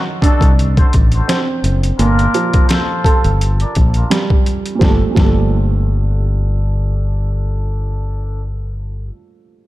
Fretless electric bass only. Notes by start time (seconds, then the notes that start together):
0.41 C2
0.94 A1
1.64 F#1
1.99 G1
3.25 G1
3.77 A#1
4.81 G1
5.17 G1